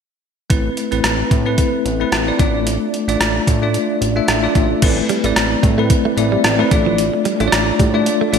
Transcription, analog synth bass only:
0.50 0.70 A1 medium
0.92 1.01 A1 medium
1.04 1.24 A1 medium
1.31 1.61 A2 medium
1.85 2.05 A1 medium
2.12 2.32 A1 loud
2.39 2.78 A1 loud
3.08 3.17 A1 medium
3.20 3.40 A1 medium
3.48 3.78 A2 medium
4.01 4.21 A1 medium
4.28 4.48 A1 loud
4.55 4.75 A1 loud
4.82 5.02 A1 medium
5.24 5.33 A1 medium
5.36 5.56 A1 medium
5.63 5.94 A2 medium
6.17 6.37 A1 loud
6.44 6.64 A1 loud
6.71 7.10 A1 loud
7.40 7.49 A1 medium
7.52 7.72 A1 loud
7.79 8.10 A2 medium
8.33 8.39 A1 medium

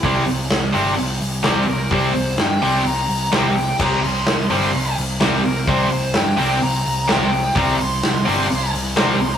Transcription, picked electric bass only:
0.03 0.23 C2 medium
0.26 0.47 C2 medium
0.49 0.70 C2 medium
0.74 0.94 G1 medium
0.99 1.18 C2 loud
1.21 1.41 C2 medium
1.44 1.64 C2 loud
1.67 1.87 C2 medium
1.91 2.11 C2 medium
2.14 2.34 C2 medium
2.37 2.58 G2 medium
2.62 2.82 C2 medium
2.85 3.05 C2 medium
3.08 3.28 C2 medium
3.32 3.72 C2 medium
3.80 3.99 C2 medium
4.04 4.23 C2 loud
4.27 4.47 C2 medium
4.50 4.70 G1 medium
4.74 4.94 C2 medium
4.98 5.17 C2 medium
5.21 5.41 C2 medium
5.45 5.65 C2 medium
5.67 5.87 C2 loud
5.92 6.12 C2 medium
6.16 6.35 G2 medium
6.38 6.58 C2 medium
6.62 6.82 C2 loud
6.86 7.06 C2 medium
7.09 7.49 C2 loud
7.56 7.76 C2 loud
7.80 8.00 C2 medium
8.03 8.23 C2 medium
8.27 8.47 G1 medium
8.51 8.71 C2 loud
8.74 8.94 C2 medium
8.98 9.17 C2 medium
9.21 9.38 C2 medium

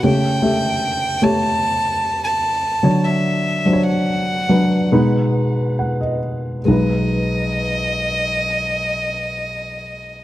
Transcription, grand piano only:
0.03 1.19 C#3 medium
0.03 0.41 A3 medium
0.03 0.41 G4 medium
0.03 0.42 C#5 medium
0.42 1.18 A3 medium
0.42 1.19 G4 medium
0.42 1.19 E5 medium
1.22 2.75 A3 medium
1.22 2.76 G4 medium
1.22 2.76 C#5 medium
2.83 4.04 D3 medium
2.83 3.62 F#3 medium
2.83 3.62 D4 medium
2.83 3.62 C#5 medium
3.66 4.46 F#3 medium
3.66 4.46 D4 soft
3.66 3.73 C5 soft
3.73 4.49 C#5 medium
4.49 4.92 F#3 medium
4.49 4.93 D4 medium
4.49 4.92 B4 medium
4.92 6.19 B2 medium
4.92 6.59 G#3 medium
4.92 6.59 D#4 medium
4.92 6.59 B4 medium
5.79 6.00 F#5 medium
6.01 6.64 D#5 medium
6.65 10.24 B1 medium
6.65 10.24 G#3 medium
6.65 10.24 D#4 medium
6.70 10.24 B4 medium

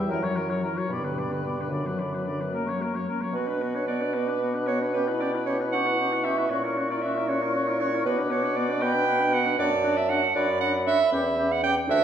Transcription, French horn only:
0.10 0.24 E3 medium
0.23 0.38 F#3 medium
0.37 0.51 E3 soft
0.50 0.62 F#3 soft
0.63 0.78 E3 soft
0.77 0.90 F#3 soft
0.90 1.04 B2 soft
1.02 1.17 D3 soft
1.16 1.32 B2 soft
1.30 1.43 D3 soft
1.44 1.60 B2 soft
1.58 1.70 D3 soft
1.71 1.87 D3 soft
1.86 2.01 F#3 soft
2.00 2.15 D3 soft
2.14 2.27 F#3 soft
2.27 2.41 D3 soft
2.40 2.53 F#3 soft
2.53 2.68 A#3 soft
2.67 2.83 F#3 soft
2.81 2.96 A#3 soft
2.94 3.07 F#3 soft
3.07 3.23 A#3 soft
3.21 3.34 F#3 soft
3.34 3.49 B3 soft
3.47 3.64 D4 soft
3.62 3.76 B3 soft
3.75 3.86 D4 soft
3.87 4.02 B3 soft
4.01 4.16 D4 soft
4.15 4.29 B3 soft
4.28 4.41 D4 soft
4.41 4.56 B3 soft
4.55 4.69 D4 soft
4.68 4.83 B3 soft
4.81 4.94 D4 soft
4.95 5.10 C#4 medium
5.08 5.23 E4 soft
5.21 5.35 C#4 soft
5.34 5.47 E4 soft
5.47 5.62 C#4 soft
5.60 5.77 E4 soft
5.75 5.89 C#4 medium
5.87 5.99 E4 soft
6.00 6.13 C#4 soft
6.12 6.26 E4 soft
6.25 6.40 C#4 soft
6.39 6.51 E4 soft
6.51 6.66 C#4 soft
6.65 6.78 E4 soft
6.77 6.92 C#4 soft
6.90 7.03 E4 soft
7.03 7.18 C#4 medium
7.17 7.30 E4 soft
7.28 7.43 C#4 medium
7.41 7.54 E4 soft
7.55 7.70 C#4 soft
7.69 7.83 E4 medium
7.82 7.95 C#4 medium
7.93 8.06 E4 medium
8.06 8.20 B3 medium
8.19 8.32 D4 medium
8.31 8.46 B3 medium
8.45 8.57 D4 soft
8.58 8.71 B3 medium
8.70 8.84 D4 soft
8.83 8.97 B3 medium
8.95 9.07 D4 medium
9.07 9.21 B3 medium
9.19 9.35 D4 medium
9.34 9.48 B3 medium
9.46 9.58 D4 medium
9.59 9.70 D4 medium
9.84 9.95 D4 medium
10.09 10.21 D4 medium
10.35 10.47 D4 medium
10.62 10.73 D4 medium
10.87 10.98 D4 medium
11.12 11.23 C#4 medium
11.37 11.49 C#4 medium
11.63 11.75 C#4 medium
11.87 11.99 D4 medium

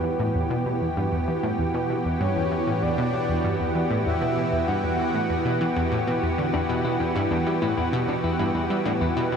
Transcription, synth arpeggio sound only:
0.04 0.09 E3 medium
0.20 0.32 A2 loud
0.35 0.40 E2 medium
0.50 0.63 B2 loud
0.66 0.78 B2 medium
0.81 0.90 E2 medium
0.97 1.05 G2 loud
1.12 1.25 E2 medium
1.28 1.33 E3 medium
1.43 1.55 A2 loud
1.59 1.64 E2 medium
1.74 1.86 B2 medium
1.90 2.02 B2 medium
2.05 2.13 E2 medium
2.21 2.29 G2 loud
2.36 2.48 E2 medium
2.52 2.56 E3 medium
2.67 2.79 A2 medium
2.82 2.87 E2 medium
2.98 3.10 B2 loud
3.13 3.26 B2 medium
3.29 3.37 E2 medium
3.44 3.52 G2 loud
3.60 3.72 E2 medium
3.75 3.80 E3 medium
3.91 4.03 A2 loud
4.06 4.11 E2 medium
4.22 4.34 B2 medium
4.37 4.49 B2 medium
4.52 4.61 E2 medium
4.68 4.76 G2 loud
4.84 4.96 E2 medium
4.99 5.04 E3 medium
5.14 5.27 A2 loud
5.30 5.35 E2 medium
5.45 5.58 B2 loud
5.61 5.66 E3 loud
5.76 5.84 E2 loud
5.92 6.00 A2 loud
6.07 6.15 B2 loud
6.23 6.31 E2 medium
6.38 6.46 D3 medium
6.54 6.59 E2 medium
6.69 6.81 B2 medium
6.85 6.97 B2 medium
7.00 7.08 E2 medium
7.16 7.24 G2 loud
7.31 7.43 E2 medium
7.47 7.55 G3 medium
7.62 7.74 A2 medium
7.78 7.82 E2 medium
7.93 8.05 B2 loud
8.08 8.20 B2 medium
8.24 8.32 E2 medium
8.39 8.47 G2 medium
8.55 8.67 E2 medium
8.70 8.78 G3 medium
8.86 8.98 A2 loud
9.01 9.06 E2 medium
9.17 9.29 B2 loud
9.32 9.37 B2 medium

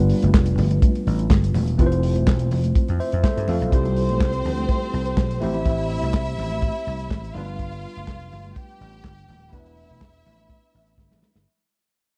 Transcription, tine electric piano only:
0.00 1.50 G3 medium
0.00 1.51 B3 medium
0.00 1.51 D4 medium
0.00 1.52 F4 medium
0.00 1.52 B4 medium
1.78 3.68 A3 medium
1.78 3.68 C4 medium
1.78 2.98 E4 medium
1.78 2.98 F4 medium
1.78 1.86 B4 medium
1.86 2.99 C5 medium
3.00 3.23 C5 medium
3.00 3.23 E5 medium
3.24 3.48 A4 medium
3.24 3.47 C5 medium
3.24 3.47 E5 medium
3.49 3.95 F4 medium
3.49 3.95 A4 medium
3.49 3.71 F5 medium
3.72 5.38 G3 medium
3.72 5.38 C4 medium
3.72 5.39 E4 medium
3.72 5.39 G4 medium
3.72 5.40 C5 medium
5.40 7.31 A3 medium
5.40 7.31 C4 medium
5.40 7.32 E4 medium
5.40 7.32 G4 medium
5.40 7.32 C5 medium
7.34 9.24 G3 medium
7.34 9.25 B3 medium
7.34 9.25 D4 medium
7.34 9.26 F4 medium
7.34 9.26 B4 medium
9.52 11.42 A3 medium
9.52 11.42 B3 medium
9.52 11.43 D4 medium
9.52 11.43 E4 medium
9.52 11.43 B4 medium

